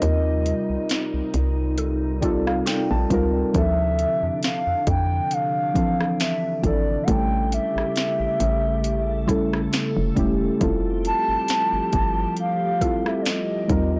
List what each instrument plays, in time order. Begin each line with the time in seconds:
Already playing: ambient pad C3 G3 D#4, synth keys G3 C4 D#4 F4 A#4, soft synth lead D#5
0.02 fm bass D#2, closed hi-hat
0.46 closed hi-hat
0.70 fm bass C2
0.89 snare, closed hi-hat
1.14 fm bass C2
1.34 fm bass C2, closed hi-hat
1.78 synth pluck A4, closed hi-hat
2.21 synth keys G3 C4 D#4 F4 A4 D5, kick, closed hi-hat
2.47 synth keys F5, cross-stick
2.66 synth pluck F4, synth keys G5, snare, closed hi-hat
2.91 fm bass A#1, synth keys A5
3.10 fm bass C#2, synth keys G3 C4 D#4 F4 A#4, kick, closed hi-hat
3.53 fm bass D2, ambient pad D3 D4, synth keys F3 C4 D4 E4 A4, soft synth lead E5, kick, closed hi-hat
3.99 closed hi-hat
4.23 fm bass F2
4.43 soft synth lead F5, snare, closed hi-hat
4.67 fm bass F2
4.87 fm bass F2, soft synth lead G5, kick, closed hi-hat
5.31 soft synth lead F5, closed hi-hat
5.74 synth keys E3 F3 C4 D4, kick, closed hi-hat
5.78 synth keys A4
6.01 cross-stick
6.20 soft synth lead E5, snare, closed hi-hat
6.62 fm bass G#1, synth keys F3 C4 D4 E4, soft synth lead D5, kick, closed hi-hat
6.66 synth keys A4
7.03 synth keys G3, soft synth lead F#5
7.07 fm bass A1, ambient pad C#3 A3 G4, synth keys A3 C#4 E4 A4, soft synth lead G5, kick, closed hi-hat
7.52 soft synth lead E5, closed hi-hat
7.76 fm bass A1, cross-stick
7.96 snare, closed hi-hat
8.20 fm bass A1
8.40 fm bass A1, closed hi-hat
8.84 ambient pad A4, closed hi-hat
9.27 synth keys G3 A3 C#4 E4 A4, synth pluck E4, kick, closed hi-hat
9.53 cross-stick
9.73 snare, closed hi-hat
9.97 fm bass F1
10.15 fm bass E1, synth keys G3 A3 C#4 E4 G4, kick, closed hi-hat
10.59 fm bass F1, ambient pad F3 G4, synth keys G3 C4 E4 F4 A4, kick, closed hi-hat
11.05 soft synth lead A5, closed hi-hat
11.29 fm bass G1
11.48 snare, closed hi-hat
11.73 fm bass G1
11.93 fm bass G1, kick, closed hi-hat
12.37 soft synth lead F5, closed hi-hat
12.80 synth keys G3 C4 E4 F4 A4, synth pluck A4, kick, closed hi-hat
13.06 soft synth lead E5, cross-stick
13.22 soft synth lead D5, closed hi-hat
13.26 soft synth lead D#5, snare
13.68 fm bass D#2, ambient pad C3 G3 D#4, synth keys G3 C4 D#4 F4 A#4, kick, closed hi-hat
13.96 soft synth lead D#5